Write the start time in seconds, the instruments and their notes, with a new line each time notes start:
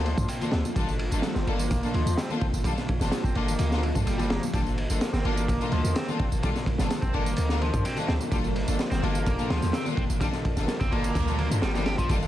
Already playing: 808-style bass D2, analog synth pad D3 F3 G3 A#3 F4
0.04 overdriven electric guitar F3, ride, muted conga, high conga
0.17 808-style bass G2, kick, tambourine, low conga
0.28 overdriven electric guitar C4, ride, tambourine
0.41 string section A#3 D4 F4 A4, ride, tambourine, high conga
0.52 808-style bass D2, overdriven electric guitar C4, snare, ride
0.65 tambourine, low conga
0.76 808-style bass G1, overdriven electric guitar G3, string section A#3 D4 F4 A4, kick, ride, tambourine, high conga
0.87 tambourine, muted conga
0.99 ride
1.11 808-style bass G1, string section A#3 D4 F4 A4, ride, tambourine, high conga, low conga
1.22 snare, ride, tambourine
1.34 808-style bass G1, overdriven electric guitar C4, snare, tambourine, muted conga
1.47 808-style bass G1, overdriven electric guitar A#3, string section A#3 D4 F4 A4, ride
1.59 tambourine, high conga
1.71 kick, ride, tambourine, muted conga
1.83 string section A#3 D4 F4 A4, ride, tambourine
1.94 808-style bass D2, overdriven electric guitar F3, ride, high conga
2.06 808-style bass E2, tambourine
2.18 overdriven electric guitar C4, snare, ride, tambourine, muted conga
2.29 string section A#3 D4 F4 A4, tambourine, high conga
2.41 808-style bass G1, overdriven electric guitar C4, kick, ride, low conga
2.53 808-style bass G1, tambourine, muted conga
2.64 overdriven electric guitar G3, string section A#3 D4 F4 A4, kick, ride, tambourine, high conga
2.78 snare, tambourine
2.89 kick, ride
3.00 808-style bass G1, string section A#3 D4 F4 A4, snare, tambourine, muted conga, high conga, low conga
3.12 snare, ride, tambourine
3.24 808-style bass G1, overdriven electric guitar C4, kick, tambourine
3.35 808-style bass G1, overdriven electric guitar A#3, string section A#3 D4 F4 A4, ride, muted conga
3.48 tambourine, high conga
3.59 808-style bass D2, ride, tambourine
3.72 string section A#3 D4 F4 A4, snare, tambourine
3.83 overdriven electric guitar D4, ride, muted conga, high conga
3.95 808-style bass G2, string section A#3 D4 F4 A4, kick, tambourine, low conga
4.06 808-style bass G1, overdriven electric guitar G3, ride, tambourine
4.19 overdriven electric guitar G3, string section A#3 D4 F4 A4, ride, tambourine, muted conga, high conga
4.30 overdriven electric guitar A#3, snare, ride
4.43 tambourine, low conga
4.53 808-style bass G1, overdriven electric guitar G3, string section A#3 D4 F4 A4, analog synth pad A#4, kick, ride, tambourine, high conga
4.66 tambourine
4.77 ride, muted conga
4.89 808-style bass G1, string section A#3 D4 F4 A4, ride, tambourine, high conga, low conga
5.01 snare, ride, tambourine
5.13 808-style bass G1, overdriven electric guitar C4, snare, tambourine, muted conga
5.25 808-style bass G1, string section A#3 D4 F4 A4, overdriven electric guitar A#3, ride
5.37 tambourine, high conga
5.48 kick, ride, tambourine
5.61 string section A#3 D4 F4 A4, ride, tambourine, muted conga
5.72 808-style bass D2, overdriven electric guitar F3, ride, high conga
5.84 808-style bass E2, tambourine
5.95 overdriven electric guitar C4, snare, ride, tambourine, muted conga
6.08 string section A#3 D4 F4 A4, tambourine, high conga
6.19 808-style bass G1, overdriven electric guitar C4, kick, ride, low conga
6.32 808-style bass G1, tambourine
6.43 overdriven electric guitar G3, string section A#3 D4 F4 A4, kick, ride, tambourine, muted conga, high conga
6.56 snare, tambourine
6.66 kick, ride
6.78 808-style bass G1, string section A#3 D4 F4 A4, snare, tambourine, muted conga, high conga, low conga
6.90 snare, ride, tambourine
7.02 808-style bass G1, overdriven electric guitar C4, kick, tambourine
7.14 808-style bass G1, string section A#3 D4 F4 A4, overdriven electric guitar A#3, ride
7.26 tambourine, muted conga, high conga
7.36 808-style bass D2, ride, tambourine
7.49 string section A#3 D4 F4 A4, snare, tambourine
7.61 overdriven electric guitar F3, ride, muted conga, high conga
7.73 808-style bass G2, kick, tambourine, low conga
7.85 overdriven electric guitar C4, ride, tambourine
7.96 string section A#3 D4 F4 A4, ride, tambourine, high conga
8.08 808-style bass D2, overdriven electric guitar C4, snare, ride, muted conga
8.19 tambourine, low conga
8.31 808-style bass G1, overdriven electric guitar G3, string section A#3 D4 F4 A4, kick, ride, tambourine, high conga
8.44 tambourine, muted conga
8.56 ride
8.67 808-style bass G1, string section A#3 D4 F4 A4, ride, tambourine, high conga, low conga
8.79 snare, ride, tambourine
8.91 808-style bass G1, overdriven electric guitar C4, snare, tambourine, muted conga
9.03 808-style bass G1, string section A#3 D4 F4 A4, overdriven electric guitar A#3, ride
9.15 tambourine, high conga
9.26 kick, ride, tambourine, muted conga
9.39 string section A#3 D4 F4 A4, ride, tambourine
9.50 808-style bass D2, overdriven electric guitar F3, snare, ride, high conga
9.62 808-style bass E2, snare, tambourine
9.73 overdriven electric guitar C4, snare, ride, tambourine, muted conga
9.86 string section A#3 D4 F4 A4, tambourine, high conga
9.97 808-style bass G1, overdriven electric guitar C4, kick, ride, low conga
10.10 808-style bass G1, tambourine, muted conga
10.20 overdriven electric guitar G3, string section A#3 D4 F4 A4, kick, ride, tambourine, noise sweep, high conga
10.33 snare, tambourine
10.45 kick, ride
10.57 808-style bass G1, string section A#3 D4 F4 A4, snare, tambourine, muted conga, high conga, low conga
10.68 snare, ride, tambourine
10.81 808-style bass G1, overdriven electric guitar C4, kick, tambourine
10.92 808-style bass G1, string section A#3 D4 F4 A4, overdriven electric guitar A#3, ride, muted conga
11.04 tambourine, high conga
11.15 808-style bass D2, kick, ride, tambourine
11.28 string section A#3 D4 F4 A4, tambourine
11.38 overdriven electric guitar A#3, ride, muted conga, high conga
11.51 808-style bass G2, string section A#3 D4 F4 A4, ride, tambourine, low conga
11.62 808-style bass G1, overdriven electric guitar G3, snare, ride, tambourine
11.75 overdriven electric guitar G3, string section A#3 D4 F4 A4, snare, tambourine, muted conga, high conga
11.86 overdriven electric guitar G4, snare, ride
11.98 overdriven electric guitar F3, kick, tambourine, low conga
12.09 808-style bass G1, overdriven electric guitar G3, string section A#3 D4 F4 A4, analog synth pad F4, kick, ride, tambourine, high conga
12.22 tambourine